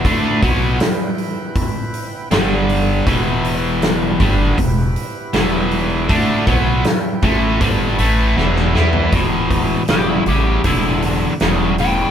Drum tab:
HH |o-o-o-o-o-o-o-o-|o-o-o-o-o-o-o-o-|o-o-o-o-o-o-----|o-o-o-o-o-o-o-o-|
SD |----o-------o---|----o-------o---|----o-------ooo-|----o-------o---|
FT |----------------|----------------|---------------o|----------------|
BD |o-o-----o-------|o-----o-o-------|o-o---o-o-------|o-o-----o-------|